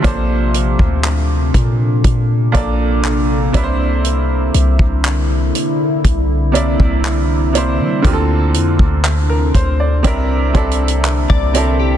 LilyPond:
<<
  \new Staff \with { instrumentName = "Clean electric guitar" } { \time 4/4 \key c \mixolydian \tempo 4 = 60 r1 | r1 | r2. r16 d''16 bes'16 g'16 | }
  \new Staff \with { instrumentName = "Grand piano" } { \time 4/4 \key c \mixolydian << { r1 | r1 | r4 r16 bes'16 c''16 d''8 r4. r16 | } \\ { <bes, bes d' a' c''>4~ <bes, bes d' a' c''>16 r4 r16 <bes, bes d' a' d''>8 r8 <c bes d' e' b' c''>8~ | <c bes d' e' b' c''>4 r4. <c bes d' e' d''>8 r8 <c bes d' e' c''>8 | <d bes c' f' g' a'>4~ <d bes c' f' g' a'>16 r8. <c c' d' e' bes'>8 <c c' d' e' a'>8 r8 <c c' d' e' a'>8 | } >> }
  \new Staff \with { instrumentName = "Ambient pad" } { \time 4/4 \key c \mixolydian << { <c d'>2.~ <c d'>8 <d e'>8~ | <d e'>1 | <c d'>2 <d e'>2 | } \\ { a'2.~ a'8 bes8~ | bes4. c'2~ c'8 | a'2 bes2 | } >> }
  \new Staff \with { instrumentName = "808-style bass" } { \clef bass \time 4/4 \key c \mixolydian bes,,8. d,8. bes,8 bes,8 bes,,4 c,8~ | c,8 c,16 c,8. r8 c,8. c,4 g16 | d,8 f,16 d,8. d,8 c,8 c,8. c,8. | }
  \new DrumStaff \with { instrumentName = "Drums" } \drummode { \time 4/4 <hh bd>8 hh16 bd16 <hc hh>8 <hh bd>8 <hh bd>8 <hh bd>8 <hc hh>8 <hh bd>8 | hh8 hh16 bd16 <hc hh>8 hh8 <hh bd>8 hh16 bd16 <hc hh>8 hh8 | <hh bd>8 hh16 bd16 <hc hh>8 <hh bd>8 \tuplet 3/2 { <hh bd>16 r16 r16 <hh bd>16 hh16 hh16 } <hc hh>16 bd16 hh8 | }
>>